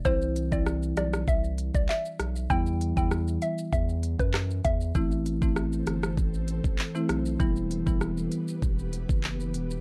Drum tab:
HH |--x---x---x---x-|--x---x---x---x-|--x---x---x---x-|--x---x---x---x-|
SH |xxxxxxxxxxxxxxxx|xxxxxxxxxxxxxxxx|xxxxxxxxxxxxxxxx|xxxxxxxxxxxxxxxx|
CP |------------x---|------------x---|------------x---|------------x---|
SD |----r-rr------r-|----r-------r---|----r-rr------r-|----r-----------|
BD |o--o----o--o----|o--o----o--o--o-|o--o----o--o----|o--o----o--o----|